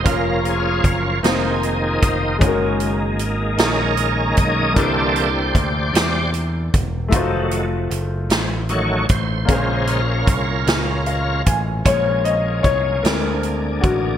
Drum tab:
HH |xxxxxx|xxxxxx|xxxxxx|xxxxxx|
SD |---o--|---o--|---o--|---o--|
BD |o-o--o|o----o|o-o--o|o----o|

HH |xxxxxx|xxxxxx|
SD |---o--|---o--|
BD |o-o--o|o-o--o|